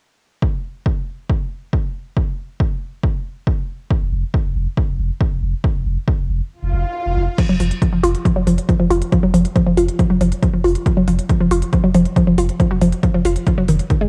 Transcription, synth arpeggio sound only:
7.38 7.44 F3 medium
7.49 7.55 F#3 medium
7.60 7.65 F3 medium
7.82 7.87 F3 medium
7.93 7.98 F3 medium
8.03 8.12 F4 medium
8.25 8.31 F3 medium
8.36 8.41 F#3 medium
8.47 8.52 F3 medium
8.69 8.74 F3 medium
8.80 8.85 F3 medium
8.90 8.99 F4 medium
9.12 9.18 F3 medium
9.23 9.28 F#3 medium
9.34 9.39 F3 medium
9.56 9.61 F3 medium
9.66 9.72 F3 medium
9.77 9.86 F4 medium
9.99 10.05 F3 medium
10.10 10.15 F#3 medium
10.21 10.26 F3 medium
10.42 10.48 F3 medium
10.54 10.59 F3 medium
10.64 10.73 F4 medium
10.86 10.92 F3 medium
10.97 11.02 F#3 medium
11.08 11.13 F3 medium
11.30 11.35 F3 medium
11.40 11.46 F3 medium
11.51 11.59 F4 medium
11.73 11.78 F3 medium
11.84 11.89 F#3 medium
11.95 12.00 F3 medium
12.16 12.22 F3 medium
12.27 12.33 F3 medium
12.38 12.46 F4 medium
12.60 12.65 F3 medium
12.71 12.76 F#3 medium
12.82 12.87 F3 medium
13.03 13.09 F3 medium
13.14 13.20 F3 medium
13.25 13.33 F4 medium
13.47 13.52 F3 medium
13.58 13.63 F#3 medium
13.69 13.72 D#3 medium
13.90 13.96 D#3 medium
14.01 14.07 G#3 medium

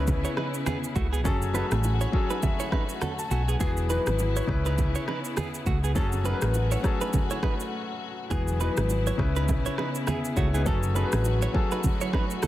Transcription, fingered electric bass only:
0.00 0.24 C#2 medium
0.96 1.25 C#2 medium
1.25 1.61 F#1 loud
1.72 2.04 A1 medium
3.31 3.54 B1 medium
3.61 3.97 E1 loud
4.07 4.39 G#1 medium
4.49 4.95 C#2 loud
5.66 5.97 C#2 medium
5.96 6.32 F#1 loud
6.42 6.75 A1 medium
8.31 8.67 E1 loud
8.78 9.10 G#1 medium
9.19 9.65 C#2 loud
10.37 10.68 C#2 medium
10.66 11.03 F#1 loud
11.13 11.45 A1 medium

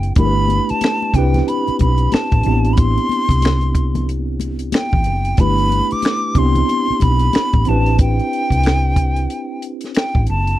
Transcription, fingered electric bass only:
0.00 0.10 F#1 medium
0.17 0.58 G1 loud
0.71 muted fingered electric bass stroke soft
1.14 1.40 C2 medium
1.68 muted fingered electric bass stroke soft
1.82 2.06 B1 medium
2.14 muted fingered electric bass stroke soft
2.33 2.43 A1 medium
2.46 2.97 A1 loud
3.30 4.69 C2 medium
4.94 5.07 A1 medium
5.07 5.32 F#1 medium
5.39 5.79 G1 loud
5.92 muted fingered electric bass stroke soft
6.36 6.62 C2 medium
6.90 muted fingered electric bass stroke soft
7.03 7.28 B1 medium
7.36 muted fingered electric bass stroke soft
7.55 7.64 A1 medium
7.69 8.19 A1 medium
8.51 9.26 C2 medium
10.16 10.25 A1 medium
10.30 10.54 F#1 medium

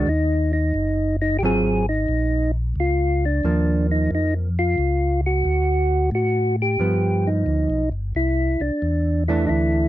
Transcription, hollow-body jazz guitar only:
1.43 1.83 F#3 medium
1.43 1.84 C4 medium
1.43 1.84 F4 medium
3.45 4.48 F3 medium
3.45 4.48 A#3 medium
6.80 7.83 F3 medium
6.80 7.84 B3 medium
9.29 9.88 E3 medium
9.29 9.88 A3 medium
9.29 9.88 D4 medium

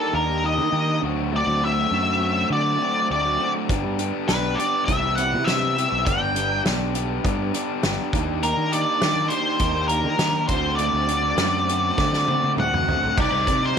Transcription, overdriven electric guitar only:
0.00 0.13 A#3 medium
0.00 0.13 D#4 medium
0.00 0.13 G4 medium
0.14 0.42 A#3 medium
0.14 0.42 D#4 medium
0.14 0.43 G4 medium
0.43 0.71 A#3 medium
0.43 0.72 D#4 medium
0.43 0.71 G4 medium
0.72 1.00 A#3 medium
0.72 1.01 D#4 medium
0.72 1.01 G4 medium
1.02 1.32 F#3 medium
1.02 1.32 A3 medium
1.02 1.32 C4 medium
1.02 1.34 F#4 medium
1.33 1.61 F#3 medium
1.33 1.61 A3 medium
1.33 1.63 C4 medium
1.33 1.63 F#4 medium
1.62 1.92 F#3 medium
1.62 1.91 A3 medium
1.62 1.92 C4 medium
1.62 1.92 F#4 medium
1.93 2.19 F#3 medium
1.93 2.20 A3 medium
1.93 2.20 C4 medium
1.93 2.21 F#4 medium
2.20 2.49 F#3 medium
2.20 2.49 A3 medium
2.20 2.50 C4 medium
2.20 2.49 F#4 medium
2.50 2.78 F#3 medium
2.50 2.78 A3 medium
2.50 2.79 C4 medium
2.50 2.79 F#4 medium
2.79 3.08 F#3 medium
2.79 3.08 A3 medium
2.79 3.09 C4 medium
2.79 3.09 F#4 medium
3.09 3.38 F#3 medium
3.09 3.39 A3 medium
3.09 3.39 C4 medium
3.09 3.39 F#4 medium
3.39 3.67 F#3 medium
3.39 3.68 A3 medium
3.39 3.68 C4 medium
3.39 3.68 F#4 medium
3.70 3.98 B3 medium
3.70 3.98 D4 medium
3.70 4.00 G4 medium
3.98 4.31 B3 medium
3.98 4.30 D4 medium
3.98 4.31 G4 medium
4.31 4.58 B3 medium
4.31 4.58 D4 medium
4.31 4.60 G4 medium
4.59 4.86 B3 medium
4.59 4.87 D4 medium
4.59 4.89 G4 medium
4.88 5.17 E3 medium
4.88 5.18 C4 medium
4.88 5.19 E4 medium
4.88 5.20 G4 medium
5.19 5.46 E3 medium
5.19 5.47 C4 medium
5.19 5.48 E4 medium
5.19 5.49 G4 medium
5.47 5.77 E3 medium
5.47 5.77 C4 medium
5.47 5.78 E4 medium
5.47 5.78 G4 medium
5.78 6.05 E3 medium
5.78 6.05 C4 medium
5.78 6.06 E4 medium
5.78 6.07 G4 medium
6.06 6.34 B3 medium
6.06 6.35 D4 medium
6.06 6.35 G4 medium
6.35 6.64 B3 medium
6.35 6.65 D4 medium
6.35 6.66 G4 medium
6.65 6.93 B3 medium
6.65 6.94 D4 medium
6.65 6.94 G4 medium
6.94 7.24 B3 medium
6.94 7.25 D4 medium
6.94 7.25 G4 medium
7.25 7.52 B3 medium
7.25 7.54 D4 medium
7.25 7.53 G4 medium
7.54 7.83 B3 medium
7.54 7.84 D4 medium
7.54 7.85 G4 medium
7.84 8.12 B3 medium
7.84 8.15 D4 medium
7.84 8.13 G4 medium
8.14 8.42 A#3 medium
8.14 8.42 D#4 medium
8.14 8.43 G4 medium
8.43 8.72 A#3 medium
8.43 8.72 D#4 medium
8.43 8.73 G4 medium
8.73 9.00 A#3 medium
8.73 9.02 D#4 medium
8.73 9.02 G4 medium
9.02 9.30 A#3 medium
9.02 9.31 D#4 medium
9.02 9.32 G4 medium
9.31 9.59 A#3 medium
9.31 9.59 D#4 medium
9.31 9.60 G4 medium
9.60 9.90 A#3 medium
9.60 9.90 D#4 medium
9.60 9.91 G4 medium
9.91 10.16 A#3 medium
9.91 10.17 D#4 medium
9.91 10.18 G4 medium
10.17 10.47 A#3 medium
10.17 10.48 D#4 medium
10.17 10.48 G4 medium
10.48 10.77 A3 medium
10.48 10.78 C4 loud
10.48 10.78 F#4 loud
10.79 11.08 A3 medium
10.79 11.08 C4 medium
10.79 11.09 F#4 medium
11.09 11.38 A3 medium
11.09 11.38 C4 medium
11.09 11.39 F#4 medium
11.39 11.67 A3 medium
11.39 11.68 C4 medium
11.39 11.69 F#4 medium
11.68 11.99 A3 medium
11.68 12.00 C4 medium
11.68 12.00 F#4 loud
12.00 12.28 A3 medium
12.00 12.29 C4 medium
12.00 12.29 F#4 medium
12.29 12.58 A3 medium
12.29 12.57 C4 medium
12.29 12.58 F#4 medium
12.59 12.87 A3 medium
12.59 12.89 C4 medium
12.59 12.89 F#4 medium
12.89 13.17 A3 medium
12.89 13.17 C4 medium
12.89 13.17 F#4 medium
13.19 13.46 G3 medium
13.19 13.48 C4 medium
13.19 13.48 D#4 medium
13.19 13.49 G4 medium
13.48 13.76 G3 medium
13.48 13.79 C4 medium
13.48 13.79 D#4 medium
13.48 13.79 G4 medium

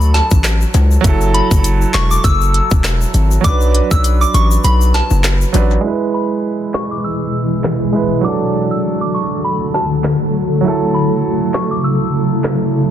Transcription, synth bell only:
0.14 0.25 A5 medium
1.34 1.45 B5 medium
1.94 2.05 C#6 medium
2.11 2.19 D6 medium
2.24 2.68 E6 loud
3.44 3.55 D6 loud
3.91 3.99 E6 medium
4.21 4.29 D6 medium
4.34 4.45 C#6 medium
4.64 4.75 B5 medium
4.94 5.05 A5 medium
6.14 6.25 B5 medium
6.74 6.85 C#6 medium
6.91 7.00 D6 medium
7.04 7.48 E6 medium
8.24 8.35 D6 medium
8.71 8.79 E6 medium
9.01 9.09 D6 medium
9.14 9.25 C#6 medium
9.44 9.55 B5 medium
9.74 9.85 A5 medium
10.94 11.05 B5 medium
11.54 11.65 C#6 medium
11.71 11.79 D6 medium
11.84 12.28 E6 medium

